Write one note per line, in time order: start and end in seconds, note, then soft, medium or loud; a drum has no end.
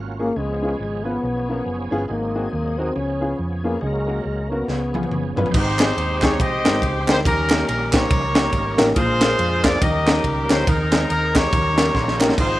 0.00 0.30 G#1 medium
0.00 0.33 A#3 soft
0.00 0.33 C#4 soft
0.00 0.33 F4 medium
0.00 0.33 F#4 medium
0.19 0.28 A#3 medium
0.19 0.39 A#3 medium
0.19 0.28 C#4 medium
0.19 0.28 F4 medium
0.19 0.29 G#4 medium
0.36 0.73 C#2 medium
0.36 1.02 C#3 medium
0.36 2.06 F3 medium
0.36 0.78 G#3 medium
0.36 2.06 B3 soft
0.36 2.06 C#4 soft
0.36 2.06 G#4 medium
0.62 0.71 B3 medium
0.62 0.71 C#4 medium
0.62 0.72 F4 soft
0.62 0.72 G#4 medium
0.79 1.16 G#1 medium
0.79 1.06 G#3 medium
1.05 1.14 B3 medium
1.05 1.92 B3 medium
1.05 1.14 C#4 medium
1.05 1.14 F4 medium
1.05 1.14 B4 medium
1.23 1.60 B1 medium
1.48 1.58 B3 medium
1.48 1.58 C#4 medium
1.48 1.58 F4 medium
1.48 1.58 A#4 medium
1.66 1.88 F#1 medium
1.91 2.06 G1 medium
1.91 2.00 B3 medium
1.91 2.01 C#4 medium
1.91 2.01 F4 medium
1.91 2.01 G#4 medium
2.08 2.46 G#1 medium
2.08 2.74 G#2 medium
2.08 2.94 F#3 medium
2.08 2.49 A#3 medium
2.08 2.94 C4 soft
2.08 2.93 D#4 medium
2.08 2.94 G#4 medium
2.35 2.44 C4 medium
2.35 2.44 D#4 medium
2.35 2.44 F#4 medium
2.35 2.44 G#4 medium
2.51 2.89 D#2 medium
2.51 2.79 A#3 medium
2.78 2.97 C4 medium
2.78 2.87 C4 medium
2.78 2.87 D#4 medium
2.78 2.88 F#4 medium
2.78 2.88 A#4 medium
2.96 3.32 C#2 medium
2.96 3.61 C#3 medium
2.96 3.80 F3 medium
2.96 3.80 B3 medium
2.96 3.39 C#4 medium
2.96 3.80 C#4 medium
2.96 3.80 G#4 medium
3.20 3.30 B3 medium
3.20 3.30 C#4 medium
3.20 3.30 F4 medium
3.20 3.30 G#4 medium
3.39 3.76 F2 medium
3.64 3.80 A#3 medium
3.64 3.73 B3 medium
3.64 3.73 C#4 medium
3.64 3.74 F4 medium
3.64 3.74 G#4 medium
3.81 4.19 C#2 medium
3.81 4.47 C#3 medium
3.81 4.66 F#3 soft
3.81 4.22 G#3 medium
3.81 4.66 A#3 soft
3.81 4.66 C#4 soft
3.81 3.88 G#4 soft
3.87 4.69 A#4 medium
4.07 4.16 A#3 medium
4.07 4.17 C#4 soft
4.07 4.17 F#4 soft
4.07 4.17 A#4 medium
4.25 4.62 C#2 medium
4.25 4.52 G#3 medium
4.51 4.60 A#3 medium
4.51 5.37 B3 medium
4.51 4.60 C#4 medium
4.51 4.60 F#4 medium
4.51 4.60 A#4 medium
4.67 5.05 C#2 medium
4.67 5.33 C#3 soft
4.67 5.52 F3 soft
4.67 5.52 B3 soft
4.67 5.52 C#4 soft
4.67 5.52 G#4 medium
4.67 snare soft
4.93 5.03 B3 medium
4.93 5.03 C#4 medium
4.93 5.03 F4 soft
4.93 5.03 G#4 medium
4.93 high tom medium
5.03 high tom medium
5.11 5.33 F#1 medium
5.11 mid tom medium
5.36 5.52 G1 medium
5.36 5.46 B3 medium
5.36 5.46 C#4 medium
5.36 5.46 F4 medium
5.36 5.46 B4 medium
5.36 floor tom medium
5.46 floor tom medium
5.51 5.91 G#1 loud
5.51 6.19 G#2 medium
5.51 7.21 G#3 medium
5.51 7.21 C4 medium
5.51 7.21 D#4 medium
5.51 6.36 D#4 medium
5.51 7.21 G4 medium
5.51 7.21 C5 medium
5.51 6.19 C5 medium
5.51 kick loud
5.51 crash loud
5.55 6.36 G4 medium
5.79 5.89 G#3 medium
5.79 5.89 C4 medium
5.79 5.89 D#4 medium
5.79 5.89 G4 medium
5.79 5.89 G#4 medium
5.79 snare loud
5.79 clap loud
5.79 ride medium
5.97 6.40 D#2 medium
5.97 ride medium
6.22 6.31 G#3 medium
6.22 6.31 C4 medium
6.22 6.32 D#4 medium
6.22 6.32 G4 medium
6.22 6.32 G#4 medium
6.22 6.40 C#5 loud
6.22 kick loud
6.22 snare medium
6.22 clap loud
6.22 ride medium
6.39 6.67 C2 medium
6.39 7.21 G4 medium
6.39 7.07 C5 medium
6.39 6.82 D#5 medium
6.39 kick loud
6.39 ride medium
6.65 6.80 G#1 medium
6.65 6.74 G#3 medium
6.65 6.74 C4 medium
6.65 6.74 D#4 medium
6.65 6.74 G4 medium
6.65 6.75 A#4 medium
6.65 snare loud
6.65 clap loud
6.65 ride medium
6.82 7.04 C#2 loud
6.82 kick medium
6.82 ride medium
7.07 7.23 D2 medium
7.07 7.17 G#3 medium
7.07 7.17 C4 medium
7.07 7.17 D#4 medium
7.07 7.17 G4 medium
7.07 7.17 A#4 medium
7.07 7.16 C5 loud
7.07 snare loud
7.07 clap medium
7.07 ride medium
7.24 7.62 D#2 loud
7.24 7.90 D#3 medium
7.24 8.93 G3 medium
7.24 8.93 A#3 medium
7.24 8.92 C#4 medium
7.24 8.07 C#4 medium
7.24 8.93 D#4 medium
7.24 7.92 G4 medium
7.24 8.92 A#4 medium
7.24 7.66 A#4 loud
7.24 kick loud
7.24 ride medium
7.50 7.60 A#3 medium
7.50 7.60 C#4 medium
7.50 7.60 D#4 medium
7.50 7.60 G4 medium
7.50 7.60 A#4 medium
7.50 snare loud
7.50 clap loud
7.50 ride medium
7.67 8.05 A#1 medium
7.67 7.92 A#4 medium
7.67 ride medium
7.92 8.02 A#3 medium
7.92 8.02 C#4 medium
7.92 8.03 D#4 medium
7.92 8.03 G4 medium
7.92 8.75 G4 medium
7.92 8.75 A#4 medium
7.92 8.03 C5 medium
7.92 8.79 C#5 loud
7.92 kick loud
7.92 snare loud
7.92 clap loud
7.92 ride medium
8.11 8.47 C#2 loud
8.11 kick loud
8.11 ride medium
8.35 8.45 A#3 medium
8.35 8.45 C#4 medium
8.35 8.45 D#4 medium
8.35 8.45 G4 medium
8.35 8.45 A#4 medium
8.35 snare loud
8.35 clap loud
8.35 ride medium
8.53 8.75 G#1 loud
8.53 kick medium
8.53 ride medium
8.77 8.94 A1 loud
8.77 8.87 A#3 loud
8.77 8.88 C#4 medium
8.77 8.88 D#4 medium
8.77 8.88 G4 medium
8.77 8.88 A#4 loud
8.77 snare loud
8.77 clap medium
8.77 ride medium
8.95 9.33 A#1 loud
8.95 9.61 A#2 medium
8.95 9.79 G#3 medium
8.95 9.79 A#3 medium
8.95 9.79 D4 medium
8.95 9.79 F4 medium
8.95 9.78 F4 medium
8.95 9.77 G#4 medium
8.95 9.79 A#4 medium
8.95 9.60 C5 loud
8.95 kick loud
8.95 ride medium
9.21 9.31 A#3 medium
9.21 9.31 D4 medium
9.21 9.31 F4 medium
9.21 9.31 G#4 medium
9.21 9.31 A#4 medium
9.21 snare loud
9.21 clap loud
9.21 ride medium
9.39 9.75 F2 loud
9.39 ride medium
9.64 9.73 A#3 medium
9.64 9.74 D4 medium
9.64 9.74 F4 medium
9.64 9.74 G#4 medium
9.64 9.74 C5 medium
9.64 9.82 D5 loud
9.64 kick loud
9.64 snare loud
9.64 clap loud
9.64 ride medium
9.80 10.18 D#2 loud
9.80 10.46 D#3 medium
9.80 10.65 G3 medium
9.80 10.65 A#3 medium
9.80 10.65 C#4 medium
9.80 10.65 D#4 medium
9.80 10.63 G4 medium
9.80 10.63 A#4 medium
9.80 10.65 A#4 medium
9.80 10.24 D#5 loud
9.80 kick loud
9.80 ride medium
10.07 10.16 A#3 medium
10.07 10.16 C#4 medium
10.07 10.17 D#4 medium
10.07 10.17 G4 medium
10.07 10.17 A#4 medium
10.07 snare loud
10.07 clap loud
10.07 ride medium
10.24 10.46 C#2 loud
10.24 kick medium
10.24 ride medium
10.49 10.65 D2 medium
10.49 10.59 A#3 medium
10.49 10.59 C#4 medium
10.49 10.59 D#4 medium
10.49 10.59 G4 medium
10.49 10.66 C5 medium
10.49 10.59 C#5 medium
10.49 snare loud
10.49 clap loud
10.49 ride medium
10.67 11.04 D#2 loud
10.67 11.32 D#3 medium
10.67 11.51 C4 medium
10.67 11.51 D#4 medium
10.67 11.49 D#4 medium
10.67 11.51 G#4 medium
10.67 11.08 A#4 medium
10.67 kick loud
10.67 ride medium
10.92 11.02 G#3 medium
10.92 11.02 C4 medium
10.92 11.02 D#4 medium
10.92 11.02 G#4 medium
10.92 11.02 C5 medium
10.92 snare loud
10.92 clap medium
10.92 ride medium
11.09 11.46 D#2 medium
11.09 11.34 A#4 medium
11.09 ride medium
11.34 11.44 G#3 medium
11.34 11.44 C4 medium
11.34 11.44 D#4 medium
11.34 12.18 G4 medium
11.34 11.44 G#4 medium
11.34 11.44 A#4 medium
11.34 12.18 A#4 medium
11.34 12.21 C#5 loud
11.34 kick loud
11.34 snare loud
11.34 clap medium
11.34 ride medium
11.52 11.89 D#2 loud
11.52 12.17 D#3 medium
11.52 12.36 G3 medium
11.52 12.36 A#3 medium
11.52 12.36 C#4 medium
11.52 12.36 D#4 medium
11.52 12.36 A#4 medium
11.52 kick loud
11.52 ride medium
11.77 11.87 A#3 medium
11.77 11.87 C#4 medium
11.77 11.87 D#4 medium
11.77 11.87 G4 medium
11.77 11.87 A#4 medium
11.77 snare loud
11.77 clap loud
11.77 ride medium
11.95 12.31 A#1 loud
11.95 12.35 C6 medium
11.95 kick medium
11.95 snare medium
12.08 snare medium
12.20 12.29 A#3 medium
12.20 12.29 C#4 medium
12.20 12.30 D#4 medium
12.20 12.30 G4 medium
12.20 12.30 A#4 loud
12.20 snare medium
12.20 clap loud
12.29 snare medium
12.37 12.60 G#1 loud
12.37 12.60 G#2 medium
12.37 12.60 F3 medium
12.37 12.60 G#3 medium
12.37 12.60 C4 medium
12.37 12.60 D#4 medium
12.37 12.60 F4 medium
12.37 12.60 G#4 medium
12.37 12.60 C5 loud
12.37 kick loud
12.37 crash medium